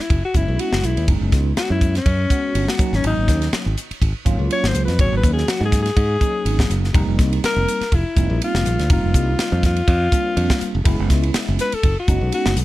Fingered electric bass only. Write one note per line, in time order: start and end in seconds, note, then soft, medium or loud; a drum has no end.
0.10 0.21 F#1 medium
0.35 0.45 F#1 medium
0.48 0.57 B1 medium
0.72 0.81 F#1 medium
0.84 0.94 B1 medium
0.97 1.06 D#2 medium
1.08 1.18 F#1 medium
1.21 1.30 F#1 medium
1.32 1.52 C#2 medium
1.70 1.98 F#2 medium
2.06 2.25 F#2 medium
2.55 2.65 G1 medium
2.79 muted fingered electric bass stroke soft
2.93 3.01 G#1 medium
3.04 3.14 G#1 medium
3.17 3.26 G#1 medium
3.28 3.47 D#2 medium
3.53 muted fingered electric bass stroke soft
3.66 3.75 G#1 medium
3.91 muted fingered electric bass stroke soft
4.01 4.12 G#1 medium
4.26 4.36 G#1 medium
4.39 4.48 C#2 medium
4.63 4.72 G#1 medium
4.74 4.85 C#2 medium
4.88 4.96 F2 medium
4.99 5.09 G#1 medium
5.12 5.21 G#1 medium
5.23 5.43 D#2 medium
5.61 5.89 G#2 medium
5.97 6.16 G#2 medium
6.45 6.67 G#1 medium
6.70 6.92 F#1 medium
6.94 7.05 F1 medium
7.08 7.16 F1 medium
7.19 7.38 C2 medium
7.43 muted fingered electric bass stroke soft
7.56 7.65 F1 medium
7.81 muted fingered electric bass stroke soft
7.92 8.03 F1 medium
8.17 8.27 F1 medium
8.30 8.39 A#1 medium
8.54 8.63 F1 medium
8.66 8.76 A#1 medium
8.79 8.88 D2 medium
8.90 9.00 F1 medium
9.04 9.12 F1 medium
9.14 9.34 C2 medium
9.52 9.80 F2 loud
9.88 10.07 F2 loud
10.37 10.47 F2 loud
10.61 muted fingered electric bass stroke soft
10.75 10.83 F1 medium
10.85 10.96 F#1 loud
11.00 11.08 F#1 medium
11.10 11.29 C#2 medium
11.48 11.57 F#1 medium
11.73 muted fingered electric bass stroke soft
11.84 11.94 F#1 medium
12.08 12.18 F#1 medium
12.21 12.30 B1 medium
12.46 12.54 F#1 medium
12.56 12.65 B1 medium